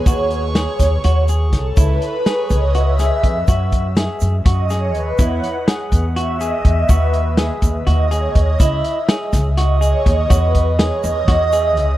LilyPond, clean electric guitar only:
\new Staff \with { instrumentName = "Clean electric guitar" } { \time 7/8 \key e \major \tempo 4 = 123 fis'4 gis'4 fis'8 gis'4 | e'4 gis'4 fis'8 gis'4 | fis'4 gis'4 fis'8 gis'4 | e'4 gis'4 fis'8 gis'4 |
fis'4 gis'4 fis'8 gis'4 | e'4 gis'4 fis'8 gis'4 | fis'4 gis'4 fis'8 gis'4 | }